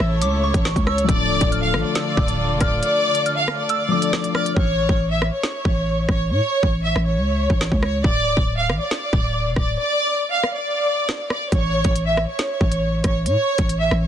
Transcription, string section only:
0.00 1.05 C#3 medium
0.00 1.05 A3 medium
0.00 1.05 E4 medium
0.00 1.05 A4 medium
1.09 4.53 D3 medium
1.09 4.53 A3 medium
1.09 4.53 F4 medium
1.09 4.53 A4 medium

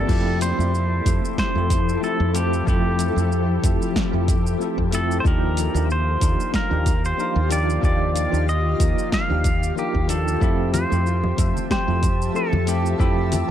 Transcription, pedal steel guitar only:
0.00 0.42 A4 loud
0.42 1.38 C5 loud
1.39 2.03 C5 loud
2.04 2.36 A4 medium
2.35 2.67 G4 medium
2.68 4.57 G4 medium
4.95 5.20 A4 medium
5.20 5.26 C5 medium
5.27 5.91 A#4 loud
5.92 6.51 C5 loud
6.56 7.06 A#4 loud
7.06 7.52 C5 loud
7.52 7.82 D5 medium
7.85 8.49 D5 loud
8.49 9.09 D#5 loud
9.14 9.74 F5 loud
9.79 10.11 G4 medium
10.10 10.73 A4 loud
10.74 11.71 C5 medium
11.72 12.32 C5 loud
12.36 12.69 A4 medium
12.69 12.99 G4 medium
13.00 13.51 G4 medium

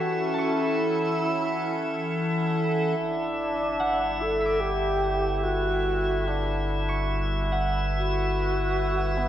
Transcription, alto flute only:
0.00 0.55 F#4 medium
0.56 2.14 E4 medium
3.01 4.23 D4 medium
4.21 4.62 A4 medium
4.60 5.45 G4 loud
5.43 6.29 F#4 loud
6.28 7.10 D4 medium
7.98 9.19 F#4 loud
9.17 9.29 B3 medium

